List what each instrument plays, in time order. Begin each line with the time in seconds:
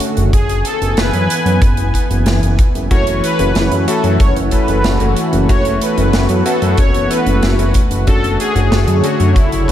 Already playing: analog synth pad D3 A3 C#4 F#4
0.00 closed hi-hat
0.17 analog synth bass F#1, closed hi-hat
0.33 analog synth bass F#1, analog synth pad E3 B3 G#5, supersaw synth G#4, kick, closed hi-hat
0.49 analog synth bass F#1, closed hi-hat
0.65 supersaw synth A4, closed hi-hat
0.81 analog synth bass F#1, closed hi-hat
0.97 analog synth bass F#1, supersaw synth B4, snare, closed hi-hat
1.13 analog synth bass F#2, closed hi-hat
1.30 closed hi-hat
1.46 analog synth bass F#2, closed hi-hat
1.62 analog synth bass F#1, kick, closed hi-hat
1.77 analog synth bass F#1, closed hi-hat
1.94 kick, closed hi-hat
2.10 analog synth bass F#1, closed hi-hat
2.26 analog synth bass F#1, snare, closed hi-hat
2.42 analog synth bass F#1, closed hi-hat
2.59 kick, closed hi-hat
2.75 analog synth bass F#1, closed hi-hat
2.91 analog synth bass F#1, analog synth pad A3 C#4 F#4, electric grand piano A3 C#4 E4 F#4, supersaw synth C#5, kick, closed hi-hat
3.07 analog synth bass F#1, closed hi-hat
3.24 supersaw synth B4, closed hi-hat
3.39 analog synth bass F#1, electric grand piano A3 C#4 E4 F#4, closed hi-hat
3.55 analog synth bass F#1, snare, closed hi-hat
3.72 analog synth bass F#2, closed hi-hat
3.88 electric grand piano A3 C#4 E4 F#4, supersaw synth A4, closed hi-hat
4.04 analog synth bass F#2, closed hi-hat
4.20 analog synth bass F#1, supersaw synth C#5, kick, closed hi-hat
4.36 analog synth bass F#1, closed hi-hat
4.51 electric grand piano A3 C#4 E4 A4, supersaw synth B4, kick, closed hi-hat
4.68 analog synth bass F#1, closed hi-hat
4.84 analog synth bass F#1, snare, closed hi-hat
5.00 analog synth bass F#1, electric grand piano A3 C#4 E4 F#4, closed hi-hat
5.17 closed hi-hat
5.33 analog synth bass F#1, closed hi-hat
5.49 analog synth bass F#1, electric grand piano A3 C#4 E4 F#4, analog synth pad B3, supersaw synth C#5, kick, closed hi-hat
5.65 analog synth bass F#1, closed hi-hat
5.82 supersaw synth B4, closed hi-hat
5.97 analog synth bass F#1, electric grand piano A3 C#4 E4 F#4, closed hi-hat
6.13 analog synth bass F#1, snare, closed hi-hat
6.29 analog synth bass F#2, closed hi-hat
6.46 electric grand piano A3 C#4 E4 F#4, supersaw synth A4, closed hi-hat
6.62 analog synth bass F#2, closed hi-hat
6.77 analog synth bass F#1, supersaw synth C#5, kick, closed hi-hat
6.94 analog synth bass F#1, closed hi-hat
7.10 electric grand piano A3 C#4 E4 A4, supersaw synth B4, closed hi-hat
7.26 analog synth bass F#1, closed hi-hat
7.43 analog synth bass F#1, snare, closed hi-hat
7.59 analog synth bass F#1, electric grand piano A3 C#4 E4 F#4, closed hi-hat
7.74 kick, closed hi-hat
7.91 analog synth bass F#1, closed hi-hat
8.07 analog synth bass F#1, analog synth pad D3 A3 C#5, electric grand piano A3 C#4 D4 F#4, supersaw synth A4, kick, closed hi-hat
8.23 analog synth bass F#1, closed hi-hat
8.40 supersaw synth G#4, closed hi-hat
8.55 analog synth bass F#1, electric grand piano A3 C#4 D4 F#4, closed hi-hat
8.72 analog synth bass F#1, snare, closed hi-hat
8.88 analog synth bass F#2, closed hi-hat
9.04 electric grand piano A3 C#4 D4 F#4, supersaw synth F#4, closed hi-hat
9.20 analog synth bass F#2, closed hi-hat
9.36 analog synth bass F#1, supersaw synth E4, kick, closed hi-hat
9.52 analog synth bass F#1, closed hi-hat
9.68 electric grand piano A3 C#4 D4 B4, supersaw synth F#4, kick